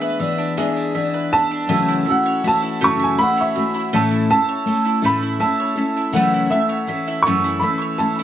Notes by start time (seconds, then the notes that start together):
Already playing: G#3 B3 D4 G#4 E5
0.01 B4
0.20 E3 B3 D4 G#4 E5
0.38 D4
0.57 E3 G#3 B3 D4 G#4 E5
0.76 D4
0.95 E3 B3 D4 G#4 E5
1.14 B4
1.33 B3 D4 E5 A5
1.51 D4
1.68 F#2 C#3 E3 A3 C#4 F#4 E5
1.88 E4
2.06 E3 A3 C#4 F#4 E5
2.10 F#5
2.26 C#5
2.43 E3 A3 C#4 F#4 E5
2.48 A5
2.62 E4
2.81 F#2 C#3 E3 A3 C#4 F#4 E5 C#6
3.00 E4 G#5
3.18 E3 A3 C#4 F#4 E5 F#5 B5
3.37 C#5 E5
3.56 E3 A3 C#4 F#4 E5
3.74 E4
3.93 A2 E3 A3 C#4 E4 A4 E5 A5
4.11 E4
4.30 A3 C#4 E4 A4 E5 A5
4.49 C#5
4.66 A3 C#4 E4 A4 E5
4.85 E4
5.02 A2 E3 A3 C#4 E4 A4 E5 B5
5.23 E4
5.39 A3 C#4 E4 A4 E5 A5
5.60 C#5
5.76 A3 C#4 E4 A4 E5
5.97 E4
6.12 F#2 C#3 E3 A3 C#4 A4 F#5
6.17 E5
6.33 E4
6.50 E3 A3 C#4 A4 E5
6.69 C#5
6.87 E3 A3 C#4 A4 E5
7.08 E4
7.23 C#3 E3 A3 C#4 A4 C#6
7.27 F#2 E5
7.44 E4
7.60 E3 A3 C#4 A4 E5 B5
7.82 C#5
7.98 E3 A3 C#4 A4 E5 A5
8.19 E4